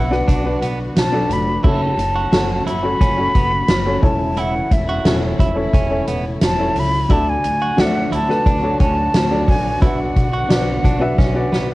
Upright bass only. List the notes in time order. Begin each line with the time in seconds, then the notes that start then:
Already playing: B1
0.28 B1
0.62 B1
0.96 B1
1.29 F1
1.65 F#1
1.97 F#1
2.32 F#1
2.66 F#1
3.01 F#1
3.35 F#1
3.69 F#1
4.03 E1
4.72 E1
5.05 E1
5.40 E1
5.74 E1
6.08 E1
6.42 E1
6.76 C#2
7.10 D2
7.44 D2
7.77 D2
8.11 D2
8.46 D2
8.81 D2
9.14 D2
9.48 A#1
9.82 B1
10.17 B1
10.50 B1
10.84 B1
11.18 B1
11.52 B1